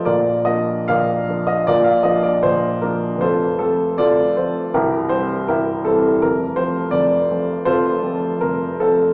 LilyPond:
<<
  \new Staff \with { instrumentName = "Upright piano" } { \time 4/4 \key bes \major \tempo 4 = 78 <f' bes' d''>8 ees''8 <bes' d'' f''>8. ees''16 <f' bes' d''>16 f''16 ees''16 d''16 c''8 bes'8 | <f' a' c''>8 a'8 <f' a' d''>8 c''8 <e' g' bes'>8 c''8 <e' g' bes'>8 a'8 | bes'8 c''8 d''4 <f' a' c''>4 bes'8 a'8 | }
  \new Staff \with { instrumentName = "Upright piano" } { \clef bass \time 4/4 \key bes \major <bes,, bes,>8 <f bes d'>8 <bes,, bes,>8 <f bes d'>8 <bes,, bes,>8 <f bes d'>8 <bes,, bes,>8 <f bes d'>8 | <f,, f,>8 <f a c'>8 <f,, f,>8 <f a c'>8 <c,, c,>8 <e g c'>8 <c,, c,>8 <e g c'>8 | <f,, f,>8 <f a c'>8 <f,, f,>8 <f a c'>8 <f,, f,>8 <f a c'>8 <f,, f,>8 <f a c'>8 | }
>>